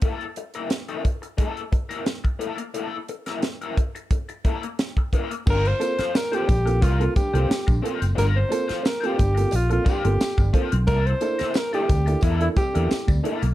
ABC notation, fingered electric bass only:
X:1
M:4/4
L:1/16
Q:1/4=89
K:Gdor
V:1 name="Fingered electric bass" clef=bass
z16 | z16 | G,,,2 z4 B,,,2 C,,2 z C,, z B,,, z ^F,,, | G,,,2 z4 G,,,2 B,,,2 z G,,, z G,,, z =B,,, |
C,,2 z4 D,,2 E,,2 z E,, z D,, z =B,,, |]